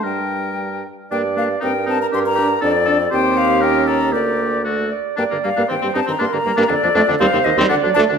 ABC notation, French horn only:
X:1
M:2/4
L:1/16
Q:1/4=118
K:Gm
V:1 name="French horn"
G,6 z2 | B,2 B,2 C2 C2 | D2 D2 D2 D2 | C4 _D4 |
B,4 A,2 z2 | B, D, G, B, E, G, C E, | B, D, G, B, D, F, A, D, | G, C, E, G, D, ^F, A, D, |]